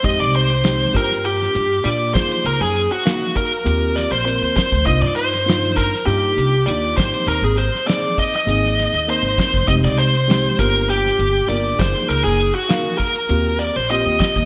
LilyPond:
<<
  \new Staff \with { instrumentName = "Lead electric guitar" } { \time 4/4 \key f \dorian \tempo 4 = 100 ees''16 d''16 c''4 bes'8 g'4 d''8 c''8 | bes'16 aes'8 ges'8. bes'4 d''16 c''16 c''8 c''8 | ees''16 d''16 c''4 bes'8 g'4 d''8 c''8 | bes'16 aes'16 c''8 d''8 ees''16 ees''4~ ees''16 c''8 c''8 |
ees''16 d''16 c''4 bes'8 g'4 d''8 c''8 | bes'16 aes'8 ges'8. bes'4 d''16 c''16 ees''8 ees''8 | }
  \new Staff \with { instrumentName = "Reed electric piano" } { \time 4/4 \key f \dorian <aes c' ees' g'>8. r16 <aes c' ees' g'>8 <bes d' f' g'>4 r8 <bes d' f' g'>8 <bes ees' f' aes'>8~ | <bes ees' f' aes'>8 r8 <bes ees' bes' f''>8. r16 <bes c' f' g'>8. r16 <bes c' f' bes'>8. r16 | <bes d' ees' f'>8. r16 <bes d' ees' f'>8. r16 <bes d' ees' f'>8. r16 <bes d' ees' f'>8 <bes c' ees' g'>8~ | <bes c' ees' g'>8 r8 <bes c' ees' aes'>8. r16 <bes c' ees' aes'>8. r16 <bes c' ees' bes'>8. r16 |
<aes c' ees' g'>8. r16 <aes c' ees' g'>8 <bes d' f' g'>4 r8 <bes d' f' bes'>8 <bes ees' f' aes'>8~ | <bes ees' f' aes'>8 r8 <bes ees' bes' f''>8. r16 <bes c' f' g'>8. r16 <bes c' f' g'>8. r16 | }
  \new Staff \with { instrumentName = "Upright bass" } { \clef bass \time 4/4 \key f \dorian f,16 c,4~ c,16 g,4 g,8 bes,8 ges,16 r16 | des,16 ges,8 r4 r16 ees,8. bes,,8 ees,16 r16 d,16 | c,16 g,4.~ g,16 g,8 c,8 ees,8 aes,,16 r16 | ees,16 aes,,8 r4 r16 aes,,8. ees,8 aes,,16 r16 ges,,16 |
f,,16 c,4~ c,16 g,,4 g,,8 g,,8 ges,,16 r16 | des,16 ges,,8 r4 r16 ees,8. bes,,8 ees,16 r16 ees,16 | }
  \new DrumStaff \with { instrumentName = "Drums" } \drummode { \time 4/4 <hhp bd cymr>8 <hhp cymr>16 cymr16 <hhp cymr sn>8 <hhp bd cymr>16 sn16 <hhp cymr>16 sn16 <hhp cymr>8 <hhp cymr>8 <hhp bd cymr sn>16 cymr16 | <hhp cymr>8 <hhp cymr>8 <hhp cymr sn>8 <hhp bd cymr>16 cymr16 <hhp cymr>8 <hhp cymr sn>16 cymr16 <hhp cymr>8 <hhp bd cymr sn>16 bd16 | <hhp bd cymr>16 sn16 <hhp cymr>16 <cymr sn>16 <hhp cymr sn>8 <hhp bd cymr sn>16 sn16 <hhp cymr>8 <hhp cymr>8 <hhp cymr>8 <hhp bd cymr sn>16 cymr16 | <hhp cymr>8 <hhp cymr>16 sn16 <hhp cymr sn>8 <hhp bd cymr>16 <cymr sn>16 <hhp cymr>16 sn16 <hhp cymr sn>16 cymr16 <hhp cymr>8 <hhp bd cymr sn>16 bd16 |
<hhp bd cymr>16 sn16 <hhp cymr>16 cymr16 <hhp cymr sn>8 <hhp bd cymr>8 <hhp cymr>16 sn16 <hhp cymr>8 <hhp cymr>8 <hhp bd cymr sn>16 cymr16 | <hhp cymr>8 <hhp cymr>8 <hhp cymr sn>8 <hhp bd cymr sn>16 cymr16 <hhp cymr>8 <hhp cymr>16 cymr16 <hhp cymr>8 <hhp bd cymr sn>16 bd16 | }
>>